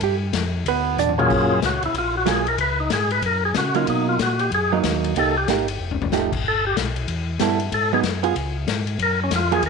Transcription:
0.01 tonewheel organ G2, hollow-body jazz guitar G4, kick, ride
0.33 tonewheel organ F2, kick, snare, hi-hat pedal, ride
0.66 tonewheel organ D2, hollow-body jazz guitar B3 B4, kick, ride
0.97 tonewheel organ E2, hollow-body jazz guitar D4 D5, hi-hat pedal, mid tom
1.09 mid tom
1.18 tonewheel organ F#3 A#3 C#4 F4 G#4, mid tom
1.30 tonewheel organ F#2, kick, crash
1.62 tonewheel organ C#2 F#4, kick, snare, hi-hat pedal, ride
1.82 tonewheel organ C#2 E4, ride
1.94 tonewheel organ A#1, kick, ride
1.98 tonewheel organ F4
2.17 tonewheel organ F#4
2.26 tonewheel organ B1, hollow-body jazz guitar F#3 A#3 F4 G#4, kick, snare, hi-hat pedal, ride
2.30 tonewheel organ G#4
2.47 tonewheel organ A#4, ride
2.58 tonewheel organ C#2 B4, kick, ride
2.80 tonewheel organ D#4
2.90 tonewheel organ G#2 G#4, kick, snare, hi-hat pedal, ride
3.10 tonewheel organ B4, ride
3.22 tonewheel organ F#2, kick, ride
3.26 tonewheel organ A#4
3.45 tonewheel organ G#4
3.54 tonewheel organ C#3 F#4, kick, snare, hi-hat pedal, ride
3.74 hollow-body jazz guitar F#3 A#3 D#4, tonewheel organ F4, ride
3.87 tonewheel organ B2 D#4, kick, ride
4.09 tonewheel organ F4
4.19 tonewheel organ A#2 F#4, kick, snare, hi-hat pedal, ride
4.39 tonewheel organ G4, ride
4.51 tonewheel organ F#2 G#4, kick, ride
4.72 hollow-body jazz guitar F#3 A#3 D#4, tonewheel organ D#4
4.83 tonewheel organ D#2, kick, snare, hi-hat pedal, ride
5.04 ride
5.16 tonewheel organ C2 A4, hollow-body jazz guitar A#3 D#4 G4, kick, ride
5.38 tonewheel organ G4
5.48 tonewheel organ G1, hollow-body jazz guitar A#3 D#4 G4, kick, snare, hi-hat pedal, ride
5.68 ride
5.79 tonewheel organ F1
5.91 floor tom
6.02 floor tom
6.12 tonewheel organ F#1, hollow-body jazz guitar F3 A3 D#4 G4, snare, hi-hat pedal
6.32 kick, crash
6.44 tonewheel organ G1, kick
6.48 tonewheel organ A4
6.67 tonewheel organ G4
6.76 tonewheel organ B1, kick, snare, hi-hat pedal, ride
6.96 ride
7.08 tonewheel organ E2, kick, ride
7.39 tonewheel organ G2, hollow-body jazz guitar G3 B3 E4 A4, kick, snare, hi-hat pedal, ride
7.60 ride
7.72 tonewheel organ G#2 A4, kick, ride
7.93 hollow-body jazz guitar F#3 B3 D#4, tonewheel organ G#4
8.03 tonewheel organ F#2, kick, snare, hi-hat pedal, ride
8.23 hollow-body jazz guitar B3 F4 G#4, ride
8.35 tonewheel organ C#2, kick, ride
8.67 tonewheel organ G#2, kick, snare, hi-hat pedal, ride
8.87 ride
8.99 tonewheel organ F#2 A#4, kick, ride
9.24 tonewheel organ C#4
9.31 tonewheel organ F2, kick, snare, hi-hat pedal, ride
9.36 tonewheel organ F4
9.52 hollow-body jazz guitar F#3 A#3 F4 G#4, tonewheel organ G#4, ride
9.63 tonewheel organ D#2 A#4, kick, ride

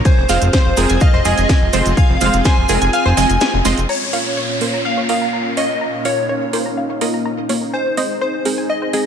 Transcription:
0.05 supersaw synth C4 F4 G#4, synth bell C5, digital synth lead C5, synth arpeggio sound G#5 G#6, kick, closed hi-hat, cabasa
0.18 analog synth bass F1
0.29 analog synth bass F1, synth pluck G#3 C4 F4 C5, synth arpeggio sound F5 F6, open hi-hat, cabasa
0.42 analog synth bass F1, closed hi-hat, cabasa
0.53 synth arpeggio sound C5 C6, digital synth lead C5, synth bell C5, kick, snare, closed hi-hat, cabasa
0.66 analog synth bass F1
0.77 analog synth bass F1, synth pluck G#3 C4 F4 A#4, synth arpeggio sound G#4 G#5, open hi-hat, cabasa
0.89 analog synth bass F1, synth arpeggio sound G#5 G#6, closed hi-hat, cabasa
1.00 digital synth lead D#5, synth bell D#5, synth arpeggio sound F5 F6, kick, closed hi-hat, cabasa
1.14 analog synth bass F1, synth arpeggio sound C5 C6
1.25 analog synth bass F1, synth pluck G#3 C4 F4 D#5, synth arpeggio sound G#4 G#5, open hi-hat, cabasa
1.38 analog synth bass F1, synth arpeggio sound G#5 G#6, closed hi-hat, cabasa
1.49 synth arpeggio sound G#5 G#6, kick, snare, closed hi-hat, cabasa
1.62 analog synth bass F1
1.73 analog synth bass F1, synth pluck G#3 C4 F4 C5, synth arpeggio sound C5 C6, open hi-hat, cabasa
1.86 analog synth bass F1, closed hi-hat, cabasa
1.97 synth bell F5, digital synth lead F5, synth arpeggio sound G#5 G#6, kick, closed hi-hat, cabasa
2.10 analog synth bass F1
2.21 analog synth bass F1, synth pluck G#3 C4 F4 C5, synth arpeggio sound F5 F6, open hi-hat, cabasa
2.33 analog synth bass F1, closed hi-hat, cabasa
2.45 synth arpeggio sound C5 C6, synth bell G#5, digital synth lead G#5, kick, snare, closed hi-hat, cabasa
2.58 analog synth bass F1
2.69 analog synth bass F1, synth pluck G#3 C4 F4 A#4, synth arpeggio sound G#4 G#5, open hi-hat, cabasa
2.81 analog synth bass F1, synth arpeggio sound G#5 G#6, closed hi-hat, cabasa
2.93 synth arpeggio sound F5 F6, synth bell G#5, digital synth lead G#5, closed hi-hat, cabasa
3.06 analog synth bass F1, synth arpeggio sound C5 C6
3.17 analog synth bass F1, synth pluck G#3 C4 F4 D#5, synth arpeggio sound G#5 G#6, open hi-hat, cabasa
3.30 analog synth bass F1, synth arpeggio sound G#5 G#6, closed hi-hat, cabasa
3.40 synth arpeggio sound G#5 G#6, snare, closed hi-hat, cabasa
3.54 analog synth bass F1
3.65 analog synth bass F1, synth pluck G#3 C4 F4 D#5, synth arpeggio sound C6, open hi-hat, cabasa
3.78 analog synth bass F1, closed hi-hat, cabasa
3.89 supersaw synth A#2 A#3 C#4 F4 F5, synth bell C#5, digital synth lead C#5, synth arpeggio sound A#5, crash, downlifter
4.13 synth pluck A#3 C#4 F4 C#5, synth arpeggio sound F5, open hi-hat
4.37 synth arpeggio sound C#5
4.61 synth pluck A#3 C#4 F4 C5, synth arpeggio sound A#4, open hi-hat
4.74 synth arpeggio sound A#5
4.85 synth arpeggio sound F5, digital synth lead F5, synth bell F5
4.98 synth arpeggio sound C#5
5.09 synth pluck A#3 C#4 F4 D#5, synth arpeggio sound A#4, synth bell F5, digital synth lead F5, open hi-hat
5.22 synth arpeggio sound A#5
5.33 synth arpeggio sound A#5
5.57 synth pluck A#3 C#4 F4 C#5, synth arpeggio sound C#5, digital synth lead D#5, synth bell D#5, open hi-hat
5.81 supersaw synth D#4, synth arpeggio sound A#5
6.05 synth pluck A#3 C#4 F4 C#5, digital synth lead C#5, synth bell C#5, synth arpeggio sound F5, open hi-hat
6.29 synth arpeggio sound C#5
6.53 synth pluck A#3 C#4 F4 C5, synth arpeggio sound A#4, open hi-hat
6.66 synth arpeggio sound A#5
6.77 synth arpeggio sound F5
6.90 synth arpeggio sound C#5
7.01 synth pluck A#3 C#4 F4 D#5, synth arpeggio sound A#4, open hi-hat
7.14 synth arpeggio sound A#5
7.25 synth arpeggio sound A#5
7.49 synth pluck A#3 C#4 F4 C#5, synth arpeggio sound C#5, open hi-hat
7.73 supersaw synth C4 G#4, synth bell C5, digital synth lead C5, synth arpeggio sound G#5
7.97 synth pluck G#3 C4 D#4 C5, synth arpeggio sound D#5, open hi-hat
8.21 synth arpeggio sound C5, synth bell C5, digital synth lead C5
8.45 synth pluck G#3 C4 D#4 A#4, synth arpeggio sound G#4, open hi-hat
8.58 synth arpeggio sound G#5
8.70 synth arpeggio sound D#5, synth bell D#5, digital synth lead D#5
8.82 synth arpeggio sound C5
8.93 synth pluck G#3 C4 D#4 D#5, synth arpeggio sound G#4, open hi-hat

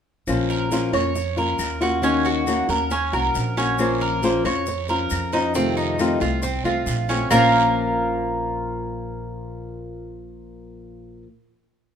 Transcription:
0.27 upright bass A#1, nylon-string guitar F3 A#3 C#4 F4, long guiro, claves, maracas
0.50 cuban tres A#4, maracas
0.71 nylon-string guitar F3 A#3 C#4 F4, short guiro, maracas
0.93 upright bass F2, nylon-string guitar A#3 C#4 F4, cuban tres C#5, short guiro, claves, maracas
1.15 muted nylon-string guitar stroke, long guiro, maracas
1.37 nylon-string guitar A#3 C#4 F4, cuban tres A#4, maracas
1.59 upright bass D#2, short guiro, claves, maracas
1.81 nylon-string guitar A#3 C#4 F4, cuban tres F#4, short guiro, maracas
2.02 nylon-string guitar D#3 A#3 C#4 F#4, cuban tres C#4, long guiro, maracas
2.25 cuban tres F#4, maracas
2.47 nylon-string guitar D#3 A#3 C#4 F#4, short guiro, claves, maracas
2.69 upright bass D#2, nylon-string guitar A#3 C#4 F#4, cuban tres A#4, short guiro, maracas
2.91 cuban tres C#4, muted nylon-string guitar stroke, long guiro, maracas
3.13 upright bass C2, nylon-string guitar A#3 C#4 F#4, cuban tres A#4, claves, maracas
3.35 upright bass A#1, short guiro, maracas
3.57 nylon-string guitar A#3 C#4 F#4, cuban tres C#4, short guiro, maracas
3.78 nylon-string guitar F3 A#3 C#4 F4 C5, long guiro, claves, maracas
4.01 cuban tres A#4, maracas
4.22 nylon-string guitar F3 A#3 C#4 F4 C5, short guiro, maracas
4.45 upright bass F2, nylon-string guitar C#4 F4 C5, cuban tres C#5, short guiro, claves, maracas
4.66 muted nylon-string guitar stroke, long guiro, maracas
4.88 nylon-string guitar C#4 F4 C5, cuban tres A#4, maracas
5.10 upright bass F2, short guiro, claves, maracas
5.32 nylon-string guitar C#4 F4 C5, cuban tres D#4, short guiro, maracas
5.54 nylon-string guitar C3 D#3 A3 C4 F4, cuban tres C4, long guiro, maracas
5.77 cuban tres D#4, maracas
5.99 nylon-string guitar C3 D#3 A3 C4 F4, short guiro, claves, maracas
6.20 upright bass C2, nylon-string guitar A3 C4 F4, cuban tres F4, short guiro, maracas
6.43 cuban tres C4, muted nylon-string guitar stroke, long guiro, maracas
6.64 upright bass C2, nylon-string guitar A3 C4 F4, cuban tres F4, claves, maracas
6.86 upright bass A#1, short guiro, maracas
7.09 nylon-string guitar A3 C4 F4, cuban tres C#4, short guiro, maracas
7.31 upright bass A#1, nylon-string guitar A#2 F3 A#3 C#4 F4 C5, cuban tres A#3 F4 A#4, long guiro, claves, maracas

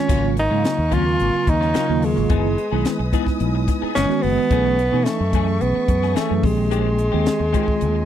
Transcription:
Already playing: tenor saxophone C#4
0.08 fingered electric bass G#1, tine electric piano C#3 F#3 A#3 F4, clean electric guitar F#3 A#3 C#4 F4, string section A#4 F5 G#5 C#6, kick, closed hi-hat, crash
0.36 tine electric piano A#3 C#4, tenor saxophone D#4, muted clean electric guitar stroke, closed hi-hat
0.50 fingered electric bass G#2, tine electric piano C#3 F#3 A#3 F4, clean electric guitar A#3 C#4 F4
0.64 muted clean electric guitar stroke, snare, closed hi-hat
0.77 fingered electric bass D#2, muted clean electric guitar stroke
0.91 tine electric piano C#3 F#3 A#3 C4, clean electric guitar F#3 A#3 C#4 F4, tenor saxophone F4, kick, closed hi-hat
1.06 muted clean electric guitar stroke
1.20 fingered electric bass G#1, closed hi-hat
1.33 muted clean electric guitar stroke, muted fingered electric bass stroke
1.47 fingered electric bass D#2, tenor saxophone D#4, muted clean electric guitar stroke, kick, closed hi-hat
1.60 clean electric guitar A#3 C#4 F4, snare
1.74 tine electric piano C#3 F#3 A#3 F4, clean electric guitar F#3 A#3 C#4 F4, muted fingered electric bass stroke, snare, closed hi-hat
1.89 fingered electric bass D#2, tine electric piano C#3 F#3 A#3 F4
2.01 tenor saxophone G#3, muted clean electric guitar stroke, open hi-hat
2.16 fingered electric bass G#1, muted clean electric guitar stroke, snare
2.29 fingered electric bass F#1, tine electric piano D#3 G#3 B3 E4, clean electric guitar E3 B3 D#4 G#4, string section B4 D#5 G#5 D#6, kick, closed hi-hat
2.58 tine electric piano B3, muted clean electric guitar stroke, closed hi-hat
2.71 fingered electric bass B1, tine electric piano D#3 G#3 B3 E4, clean electric guitar B3 D#4 G#4
2.85 muted clean electric guitar stroke, snare, closed hi-hat
2.99 fingered electric bass B1, tine electric piano B3, muted clean electric guitar stroke
3.13 clean electric guitar E3 B3 D#4 G#4, tine electric piano G#3 B3 D#4 E4, kick, closed hi-hat
3.26 muted clean electric guitar stroke, muted fingered electric bass stroke, kick, snare
3.40 fingered electric bass B1, closed hi-hat
3.55 muted clean electric guitar stroke
3.68 muted clean electric guitar stroke, kick, snare, closed hi-hat
3.82 clean electric guitar B3 D#4 G#4, muted fingered electric bass stroke
3.95 fingered electric bass F#1, tine electric piano D#3 G#3 B3 E4, clean electric guitar E3 B3 D#4 G#4, tenor saxophone C#4, snare, closed hi-hat
4.09 tine electric piano D#3 G#3 B3 F#4, snare
4.22 fingered electric bass F#1, tenor saxophone B3, muted clean electric guitar stroke, open hi-hat
4.37 muted clean electric guitar stroke
4.50 fingered electric bass B1, tine electric piano E3 A3 C#4 G#4, clean electric guitar E3 A3 C#4 G#4, string section A3 C#6, kick, closed hi-hat
4.79 muted clean electric guitar stroke, closed hi-hat
4.91 fingered electric bass B2, tine electric piano E3 A3 C#4 D#4, clean electric guitar A3 C#4 G#4
5.04 tenor saxophone A3, muted clean electric guitar stroke, snare, closed hi-hat
5.19 fingered electric bass F#2, tine electric piano C#4 B4, muted clean electric guitar stroke
5.32 tine electric piano E3 A3 C#4 G#4, clean electric guitar E3 A3 C#4 G#4, kick, closed hi-hat
5.61 fingered electric bass B1, tenor saxophone B3, closed hi-hat
5.75 muted clean electric guitar stroke
5.88 fingered electric bass F#2, muted clean electric guitar stroke, kick, closed hi-hat
6.03 clean electric guitar A3 C#4 G#4, snare
6.15 tine electric piano E3 A3 C#4 G#4, clean electric guitar E3 A3 C#4 G#4, tenor saxophone A3, muted fingered electric bass stroke, snare, closed hi-hat
6.30 fingered electric bass F#2, tine electric piano E3 A3 C#4 G#4
6.43 fingered electric bass A#1, tine electric piano D#3 G#3 C4 G4, tenor saxophone G#3, string section G#3 D#5 G5 C6, muted clean electric guitar stroke, kick, open hi-hat
6.57 muted clean electric guitar stroke
6.71 clean electric guitar D#3 G#3 C4 G4, closed hi-hat
6.98 muted clean electric guitar stroke, closed hi-hat
7.12 fingered electric bass D#2, tine electric piano D#3 G#3 C4 G4, clean electric guitar G#3 C4 G4
7.26 muted clean electric guitar stroke, muted fingered electric bass stroke, snare, closed hi-hat
7.39 fingered electric bass D#2, muted clean electric guitar stroke
7.53 clean electric guitar D#3 G#3 C4 G4, tine electric piano D#3 G#3 C4 F4, kick, closed hi-hat
7.67 muted clean electric guitar stroke, muted fingered electric bass stroke, kick
7.81 fingered electric bass D#2, closed hi-hat
7.95 muted clean electric guitar stroke

